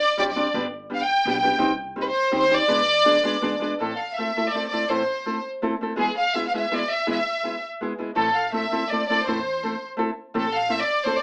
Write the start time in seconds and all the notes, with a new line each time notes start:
Already playing: D5
0.17 C2 G3 C4 D4 G4 D5
0.30 D5
0.36 G3 C4 D4 G4
0.54 G1 G2 D3 G3 B3 D4 G4
0.90 G3 B3 D4 G4
0.94 F5
1.04 G5
1.25 B1 G3 B3 D4 G4
1.30 G5
1.39 G3 B3 G5
1.44 D4 G4
1.58 C2 C3 G3 C4 D#4 G4
1.96 G3 C4 D#4 G4
2.01 B4
2.09 C5
2.31 D#2 G3 C4 D#4 G4
2.37 C5
2.49 G3 C4 D#4 G4
2.56 D5
2.68 E2 E3 G#3 B3 D4 G#4
3.05 G#3 B3 D4 G#4
3.23 G#3 B3 D4 G#4
3.41 E2 G#3 B3 D4 G#4
3.60 G#3 B3 D4 G#4
3.79 A2 E3 A3 C4 E4 A4
3.96 F5
4.14 E5
4.18 A3 C4 E4 A4
4.37 A3 C4 E4 A4
4.49 D5
4.54 A3 C4 E4 A4
4.68 D5
4.72 A3 C4 E4 A4
4.88 A2 E3 A3 C4 E4 A4 C5
5.26 A3 C4 E4 A4
5.62 A3 C4 E4 A4
5.81 A3 C4 E4 A4
5.96 E3 G#3 B3 E4 G#4
6.17 F5
6.34 G#3 B3 E4 G#4 E5
6.47 F5
6.54 G#3 B3 E4 G#4 E5
6.71 G#3 B3 E4 G#4
6.76 D5
6.92 E5
7.07 E3 G#3 B3 E4 G#4
7.12 E5
7.43 G#3 B3 E4 G#4
7.81 G#3 B3 E4 G#4
7.98 G#3 B3 E4 G#4
8.15 A1 A2 E3 A3 C4 E4 A4
8.36 F5
8.52 A3 C4 E4 A4 E5
8.71 A3 C4 E4 A4
8.90 A3 C4 E4 A4 D5
9.09 A3 C4 E4 A4 D5
9.27 E2 A2 E3 A3 C4 E4 A4 C5
9.63 A3 C4 E4 A4
9.97 A3 C4 E4 A4
10.34 A1 A2 E3 A3 C4 E4 A4
10.39 A4
10.55 F5
10.69 A3 C4 E4 A4 E5
10.81 D5
11.05 A3 C4 E4 A4 C5
11.17 D5